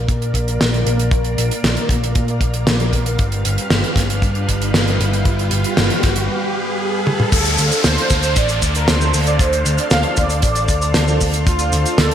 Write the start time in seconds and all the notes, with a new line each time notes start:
Already playing: A#3 A#4 D5 F5, riser
0.09 A#2, kick, closed hi-hat
0.22 closed hi-hat
0.34 A#1, kick, closed hi-hat
0.48 closed hi-hat
0.60 A#1, snare, closed hi-hat
0.74 closed hi-hat
0.86 A#1, closed hi-hat
0.99 closed hi-hat
1.11 A#1, kick, closed hi-hat
1.24 closed hi-hat
1.38 A#1, closed hi-hat
1.51 closed hi-hat
1.64 A#1, snare, closed hi-hat
1.77 closed hi-hat
1.89 A#1, kick, closed hi-hat
2.04 closed hi-hat
2.15 A#2, kick, closed hi-hat
2.28 closed hi-hat
2.41 A#1, kick, closed hi-hat
2.54 closed hi-hat
2.67 A#1, snare, closed hi-hat
2.80 closed hi-hat
2.93 A#1, kick, closed hi-hat
3.06 closed hi-hat
3.19 G1 G3 G4 B4, kick, closed hi-hat
3.32 closed hi-hat
3.45 G1, closed hi-hat
3.58 closed hi-hat
3.70 G1, snare, closed hi-hat
3.84 closed hi-hat
3.96 G1, kick, snare, closed hi-hat
4.10 closed hi-hat
4.22 G2, kick, closed hi-hat
4.35 closed hi-hat
4.49 G1, kick, closed hi-hat
4.62 closed hi-hat
4.74 G1, snare, closed hi-hat
4.88 closed hi-hat
5.00 G1, closed hi-hat
5.13 closed hi-hat
5.25 G1, kick, closed hi-hat
5.39 closed hi-hat
5.51 G1, closed hi-hat
5.64 closed hi-hat
5.77 G1, snare, closed hi-hat
5.90 closed hi-hat
6.03 G1, kick, snare, closed hi-hat
6.16 closed hi-hat
7.07 high tom
7.20 mid tom
7.32 D2 D4 A4 C5 F5, kick, closed hi-hat, crash, downlifter, cabasa
7.45 closed hi-hat, cabasa
7.58 D2, closed hi-hat, cabasa
7.71 A4, closed hi-hat, cabasa
7.84 D2 C5, snare, closed hi-hat, cabasa
7.98 closed hi-hat
8.10 D2, kick, snare, closed hi-hat, cabasa
8.23 C5, closed hi-hat, cabasa
8.36 A1 D5, kick, closed hi-hat, cabasa
8.49 closed hi-hat, cabasa
8.62 D2, kick, closed hi-hat, cabasa
8.75 A#4, closed hi-hat, cabasa
8.88 D2 C5, snare, closed hi-hat, cabasa
9.01 cabasa
9.14 D2, open hi-hat, cabasa
9.27 D5, closed hi-hat, cabasa
9.39 C5, kick, closed hi-hat, cabasa
9.53 closed hi-hat, cabasa
9.65 D2, closed hi-hat, cabasa
9.78 D5, closed hi-hat, cabasa
9.91 D2 F5, snare, closed hi-hat, cabasa
10.03 closed hi-hat
10.17 D2 D5, kick, closed hi-hat, cabasa
10.29 closed hi-hat, cabasa
10.42 A1, kick, closed hi-hat, cabasa
10.55 closed hi-hat, cabasa
10.68 D2, kick, closed hi-hat, cabasa
10.82 closed hi-hat, cabasa
10.94 D2, snare, closed hi-hat, cabasa
11.08 cabasa
11.20 D2, kick, open hi-hat, cabasa
11.33 closed hi-hat, cabasa
11.47 D2 F4, kick, closed hi-hat, cabasa
11.59 closed hi-hat, cabasa
11.72 D2, closed hi-hat, cabasa
11.85 F4, closed hi-hat, cabasa
11.98 D2 A4, snare, closed hi-hat, cabasa
12.11 closed hi-hat